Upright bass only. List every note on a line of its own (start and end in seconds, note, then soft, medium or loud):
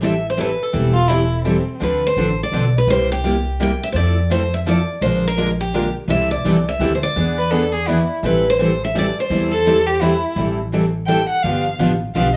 0.00 0.51 A1 medium
0.74 1.59 E1 medium
1.81 2.10 D2 medium
2.16 2.47 A1 medium
2.52 2.82 B1 medium
2.87 3.73 C2 medium
3.94 4.80 F2 medium
5.01 5.87 A#1 medium
6.08 6.37 C2 medium
6.45 6.75 C2 medium
6.79 7.10 D2 medium
7.16 8.02 E2 medium
8.23 9.09 A1 medium
9.30 10.16 E2 medium
10.36 11.22 A1 medium
11.44 11.73 G1 medium
11.79 12.10 A1 medium
12.15 12.37 B1 medium